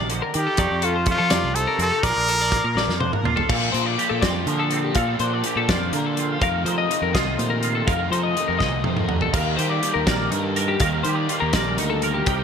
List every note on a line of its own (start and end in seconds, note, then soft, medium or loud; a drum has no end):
0.00 0.20 A#1 medium
0.00 0.33 D#3 medium
0.00 0.56 A#3 medium
0.00 0.59 D4 soft
0.00 0.11 D5 medium
0.09 0.34 D3 medium
0.09 0.23 C5 medium
0.09 closed hi-hat medium
0.22 0.46 A#4 medium
0.34 0.57 D#3 medium
0.34 0.46 D#3 loud
0.34 0.86 G4 medium
0.34 closed hi-hat medium
0.47 0.59 A4 medium
0.57 2.03 F2 medium
0.57 0.69 F2 loud
0.57 0.81 F3 medium
0.57 1.06 A3 medium
0.57 1.53 D#4 medium
0.57 0.83 D5 medium
0.57 kick loud
0.57 closed hi-hat medium
0.71 1.14 F2 medium
0.81 2.03 F3 medium
0.81 1.08 F4 medium
0.81 0.95 A4 medium
0.81 closed hi-hat medium
0.96 1.20 C5 medium
1.06 2.04 A3 medium
1.06 1.56 F4 medium
1.06 kick medium
1.06 closed hi-hat medium
1.18 1.30 F3 medium
1.18 1.31 A4 medium
1.29 1.43 F2 medium
1.29 2.00 C3 medium
1.29 1.54 D5 medium
1.29 snare loud
1.29 closed hi-hat loud
1.44 1.65 C2 medium
1.54 1.77 D#4 medium
1.54 1.80 A4 medium
1.54 1.67 C5 medium
1.54 closed hi-hat medium
1.67 1.91 A#4 medium
1.77 1.90 F2 medium
1.77 1.89 C4 medium
1.77 closed hi-hat medium
1.82 2.04 A4 medium
1.89 2.03 D#4 soft
1.89 2.04 A4 medium
2.03 2.15 A#1 loud
2.03 2.76 A#2 medium
2.03 2.25 F3 medium
2.03 2.50 A#3 medium
2.03 3.00 D4 medium
2.03 3.24 F4 medium
2.03 3.01 A#4 loud
2.03 2.28 D5 medium
2.03 kick loud
2.03 closed hi-hat loud
2.16 2.59 A#1 medium
2.26 3.46 F3 medium
2.26 2.41 A4 medium
2.26 closed hi-hat medium
2.41 2.65 D5 medium
2.51 3.46 A#3 medium
2.51 kick medium
2.51 closed hi-hat medium
2.64 2.75 A#2 medium
2.64 2.77 A#4 medium
2.75 2.87 A#1 loud
2.75 3.49 F2 medium
2.75 3.00 D5 medium
2.75 snare medium
2.88 3.10 F2 medium
2.88 snare soft
3.00 3.47 D4 medium
3.00 3.12 C5 medium
3.00 high tom medium
3.12 3.37 A#4 medium
3.12 mid tom medium
3.23 3.35 A#2 medium
3.23 3.49 F4 medium
3.23 mid tom medium
3.36 3.49 A4 medium
3.36 floor tom medium
3.49 4.94 A#2 medium
3.49 3.97 A#2 medium
3.49 3.71 A#2 medium
3.49 3.76 F3 medium
3.49 3.75 A#3 medium
3.49 3.73 D4 medium
3.49 3.98 A4 medium
3.49 3.72 F5 medium
3.49 kick loud
3.49 crash loud
3.72 3.96 A#2 medium
3.72 3.99 A#3 medium
3.72 4.00 D4 medium
3.72 3.86 C5 medium
3.72 closed hi-hat medium
3.77 3.98 F3 medium
3.86 4.10 D5 medium
3.97 4.23 A#2 medium
3.97 4.23 F3 medium
3.97 4.23 A#3 medium
3.97 4.21 D4 medium
3.97 4.93 G4 medium
3.97 closed hi-hat medium
4.09 4.21 A#2 medium
4.09 4.22 A4 medium
4.21 4.44 F2 medium
4.21 4.46 A#2 medium
4.21 4.48 F3 medium
4.21 4.49 A#3 medium
4.21 4.72 C4 medium
4.21 4.49 D4 medium
4.21 4.47 D5 medium
4.21 kick medium
4.21 snare loud
4.21 closed hi-hat medium
4.46 4.93 A#2 medium
4.46 4.90 D3 medium
4.46 5.49 F3 medium
4.46 4.95 F3 medium
4.46 4.96 A#3 medium
4.46 4.96 D4 medium
4.46 4.59 A#4 medium
4.46 closed hi-hat medium
4.60 4.84 A4 medium
4.71 5.71 C4 medium
4.71 closed hi-hat medium
4.84 4.96 G4 medium
4.94 5.42 A#2 medium
4.94 5.17 A#2 medium
4.94 6.42 A#2 medium
4.94 5.20 F3 medium
4.94 5.20 A#3 medium
4.94 5.17 D4 medium
4.94 5.45 A4 medium
4.94 5.20 F5 medium
4.94 kick loud
4.94 closed hi-hat medium
5.19 5.41 A#2 medium
5.19 5.44 F3 medium
5.19 5.45 A#3 medium
5.19 5.45 D4 medium
5.19 6.40 D4 medium
5.19 5.33 C5 medium
5.19 closed hi-hat medium
5.33 5.57 D5 medium
5.44 5.69 A#2 medium
5.44 5.69 F3 medium
5.44 5.69 A#3 medium
5.44 5.67 D4 medium
5.44 6.40 G4 medium
5.44 closed hi-hat medium
5.56 5.67 A#2 medium
5.56 5.69 A4 medium
5.68 5.90 F2 medium
5.68 5.91 A#2 medium
5.68 5.93 F3 medium
5.68 5.94 A#3 medium
5.68 5.95 D4 medium
5.68 6.19 F4 medium
5.68 5.94 D5 medium
5.68 kick medium
5.68 snare loud
5.68 closed hi-hat medium
5.93 6.40 A#2 medium
5.93 6.36 D3 medium
5.93 6.40 F3 medium
5.93 8.87 A#3 medium
5.93 6.41 A#3 medium
5.93 6.41 D4 medium
5.93 6.06 A#4 medium
5.93 closed hi-hat medium
6.06 6.30 A4 medium
6.17 6.70 F4 medium
6.17 closed hi-hat medium
6.30 6.42 G4 medium
6.39 6.92 F2 medium
6.39 6.63 F2 medium
6.39 7.85 F2 medium
6.39 6.87 C3 medium
6.39 6.66 D#3 medium
6.39 6.64 A3 medium
6.39 6.63 D#4 loud
6.39 7.87 A#4 medium
6.39 6.65 F5 medium
6.39 kick loud
6.39 closed hi-hat medium
6.64 6.88 D#3 medium
6.64 6.87 F3 medium
6.64 6.90 A3 medium
6.64 6.91 D#4 medium
6.64 7.90 D#4 medium
6.64 6.77 C5 medium
6.64 closed hi-hat medium
6.78 7.02 D#5 medium
6.89 7.14 C3 medium
6.89 7.14 D#3 medium
6.89 7.13 A3 medium
6.89 7.13 D#4 medium
6.89 closed hi-hat medium
7.02 7.13 F2 medium
7.02 7.15 A#4 medium
7.13 7.36 C2 medium
7.13 7.64 F2 medium
7.13 7.37 C3 medium
7.13 7.38 D#3 medium
7.13 7.39 A3 medium
7.13 7.41 D#4 medium
7.13 7.63 F4 medium
7.13 7.38 D#5 medium
7.13 kick medium
7.13 snare loud
7.13 closed hi-hat medium
7.38 7.82 A#2 medium
7.38 7.86 C3 medium
7.38 7.87 D#3 medium
7.38 7.88 A3 medium
7.38 7.89 D#4 medium
7.38 7.51 C5 medium
7.38 closed hi-hat medium
7.50 7.75 A#4 medium
7.63 8.14 F4 medium
7.63 closed hi-hat medium
7.75 7.88 A4 medium
7.87 9.34 F2 medium
7.87 8.36 F2 medium
7.87 8.09 F2 loud
7.87 8.34 C3 medium
7.87 8.13 D#3 medium
7.87 8.12 A3 medium
7.87 8.11 D#4 medium
7.87 8.87 A#4 medium
7.87 8.11 F5 medium
7.87 kick loud
7.87 closed hi-hat medium
8.11 8.35 D#3 medium
8.11 8.33 F3 medium
8.11 8.36 A3 medium
8.11 10.30 D#4 medium
8.11 8.38 D#4 medium
8.11 8.23 C5 medium
8.11 closed hi-hat medium
8.23 8.48 D#5 medium
8.35 8.61 C3 medium
8.35 8.60 D#3 medium
8.35 8.59 A3 medium
8.35 8.60 D#4 medium
8.35 closed hi-hat medium
8.48 8.59 F2 medium
8.48 8.60 A#4 medium
8.59 8.83 C2 medium
8.59 8.83 A#2 medium
8.59 8.83 C3 medium
8.59 8.84 D#3 medium
8.59 8.84 A3 medium
8.59 8.86 D#4 medium
8.59 8.84 D#5 medium
8.59 kick medium
8.59 snare medium
8.63 9.11 F2 medium
8.84 9.28 F2 loud
8.84 9.07 C3 medium
8.84 9.32 C3 medium
8.84 9.31 D#3 medium
8.84 9.33 A3 medium
8.84 9.35 D#4 medium
8.84 8.97 C5 medium
8.84 high tom medium
8.97 9.22 A#4 medium
8.97 mid tom medium
9.08 9.33 D3 medium
9.08 mid tom medium
9.21 9.34 A4 medium
9.21 floor tom medium
9.32 9.55 D#2 medium
9.32 10.79 D#3 medium
9.32 9.81 D#3 medium
9.32 9.60 G3 medium
9.32 9.59 A#3 medium
9.32 9.57 D#4 medium
9.32 9.82 A#4 medium
9.32 9.56 F5 medium
9.32 kick loud
9.32 closed hi-hat medium
9.32 crash medium
9.57 9.80 D#3 medium
9.57 9.82 A#3 medium
9.57 9.83 D#4 medium
9.57 9.82 G4 medium
9.57 9.69 C5 medium
9.57 closed hi-hat medium
9.61 9.82 G3 soft
9.69 9.94 D5 medium
9.81 10.08 D#3 medium
9.81 10.08 G3 medium
9.81 10.07 A#3 medium
9.81 10.06 D#4 medium
9.81 10.07 G4 medium
9.81 closed hi-hat medium
9.94 10.06 D#2 medium
9.94 10.07 A#4 medium
10.06 10.28 A#1 medium
10.06 10.30 D#3 medium
10.06 10.32 G3 medium
10.06 10.32 A#3 medium
10.06 10.34 D#4 medium
10.06 10.56 A#4 medium
10.06 10.31 D5 medium
10.06 kick medium
10.06 snare loud
10.06 closed hi-hat medium
10.31 10.75 G2 medium
10.31 10.79 D#3 medium
10.31 10.81 G3 medium
10.31 10.81 A#3 medium
10.31 11.33 D#4 medium
10.31 10.83 D#4 medium
10.31 10.43 A#4 medium
10.31 closed hi-hat medium
10.43 10.68 A4 medium
10.56 10.81 A#4 medium
10.56 closed hi-hat medium
10.68 10.80 G4 medium
10.80 11.02 D#2 medium
10.80 11.28 D#3 medium
10.80 12.26 D#3 medium
10.80 11.09 G3 medium
10.80 11.08 A#3 medium
10.80 11.06 D#4 medium
10.80 11.29 A#4 medium
10.80 11.03 F5 medium
10.80 kick loud
10.80 closed hi-hat medium
11.03 11.26 D#3 medium
11.03 11.32 D#4 medium
11.03 11.42 G4 medium
11.03 11.15 C5 medium
11.03 closed hi-hat medium
11.08 11.31 G3 medium
11.08 11.32 A#3 medium
11.15 11.40 D5 medium
11.29 11.54 D#3 medium
11.29 11.53 G3 medium
11.29 11.53 A#3 medium
11.29 11.51 D#4 medium
11.29 11.43 F4 medium
11.29 closed hi-hat medium
11.40 11.53 D#2 medium
11.40 11.54 G4 soft
11.40 11.53 A#4 medium
11.52 11.75 A#1 medium
11.52 11.77 D#3 medium
11.52 11.77 G3 medium
11.52 11.80 A#3 medium
11.52 11.79 D#4 medium
11.52 12.03 A#4 medium
11.52 11.78 D5 medium
11.52 kick medium
11.52 snare loud
11.52 closed hi-hat medium
11.77 12.21 D2 medium
11.77 12.25 D#3 medium
11.77 12.26 G3 medium
11.77 12.28 A#3 medium
11.77 12.24 D#4 medium
11.77 12.27 D#4 medium
11.77 11.90 A#4 medium
11.77 closed hi-hat medium
11.90 12.14 A4 medium
12.02 12.29 A#4 medium
12.02 closed hi-hat medium
12.14 12.27 G4 medium
12.26 12.44 C2 medium
12.26 12.44 C3 medium
12.26 12.44 D#3 medium
12.26 12.44 G3 medium
12.26 12.44 C4 medium
12.26 12.44 D#4 medium
12.26 12.44 G4 medium
12.26 12.44 A#4 medium
12.26 12.44 G5 medium
12.26 kick loud
12.26 closed hi-hat medium